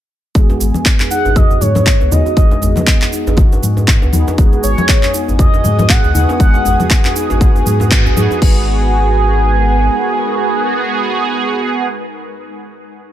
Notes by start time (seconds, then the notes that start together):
0.35 G#1 G#3 B3 F#4 G#4, kick, cabasa
0.50 djembe tone, cabasa
0.60 G#1 G#3, cabasa
0.74 djembe tone, high conga, cabasa
0.85 B3, kick, clap, cabasa
1.00 clap, djembe tone, cabasa
1.11 D#4 F#5, cabasa
1.25 G#1, djembe tone, cabasa
1.36 F#4 D#5, kick, high conga, low conga, djembe bass, cabasa
1.50 djembe tone, cabasa
1.61 G#2 G#3 C#5, high conga, low conga, cabasa
1.75 high conga, djembe tone, cabasa
1.86 B3, kick, clap, cabasa
2.00 C#2, djembe tone, cabasa
2.11 D#2 B3 D#4 F#4 G#4 D#5, low conga, cabasa
2.26 djembe tone, cabasa
2.37 G#1 G#3, kick, cabasa
2.51 djembe tone, cabasa
2.62 G#1 G#3, djembe bass, cabasa
2.76 djembe tone, high conga, low conga, cabasa
2.87 B3, kick, clap, cabasa
3.02 clap, djembe tone, cabasa
3.12 D#4, cabasa
3.27 G#1, djembe tone, cabasa
3.37 F#4, kick, high conga, low conga, cabasa
3.52 djembe tone, cabasa
3.63 G#2 G#3, high conga, cabasa
3.77 djembe tone, cabasa
3.88 B3, kick, clap, cabasa
4.02 C#2, djembe tone, cabasa
4.13 D#2 B3 D#4 F#4 G#4, high conga, cabasa
4.28 djembe tone, cabasa
4.38 G#1 G#3 B3 F#4 G#4 B4 G#5 D#6, kick, cabasa
4.53 djembe tone, cabasa
4.63 G#1 G#3 C#5, cabasa
4.78 djembe tone, high conga, cabasa
4.89 B3, kick, clap, cabasa
5.03 clap, djembe tone, cabasa
5.14 D#4, cabasa
5.28 G#1, djembe tone, cabasa
5.39 F#4 D#5, kick, high conga, low conga, djembe bass, cabasa
5.54 djembe tone, cabasa
5.64 G#2 G#3, high conga, low conga, cabasa
5.79 djembe tone, high conga, cabasa
5.89 B3 F#5, kick, clap, cabasa
6.04 C#2, djembe tone, cabasa
6.15 D#2 B3 D#4 F#4 G#4, low conga, cabasa
6.29 djembe tone, cabasa
6.39 G#1 G#3 B3 G#4 F#5, kick, cabasa
6.54 djembe tone, cabasa
6.65 G#1 G#3, djembe bass, cabasa
6.80 high conga, djembe tone, low conga, cabasa
6.90 B3, kick, clap, cabasa
7.05 clap, djembe tone, cabasa
7.16 D#4, cabasa
7.30 G#1, djembe tone, cabasa
7.41 F#4, kick, high conga, low conga, cabasa
7.56 djembe tone, cabasa
7.66 G#2 G#3, high conga, cabasa
7.80 djembe tone, cabasa
7.91 B3, kick, clap, cabasa
8.05 F#1, djembe tone, cabasa
8.17 G#2 B3 D#4 F#4 G#4, high conga, cabasa
8.31 djembe tone, cabasa
8.42 G#1 G#3 B3 D#4 G#4 A#4 B4 G#5, kick, crash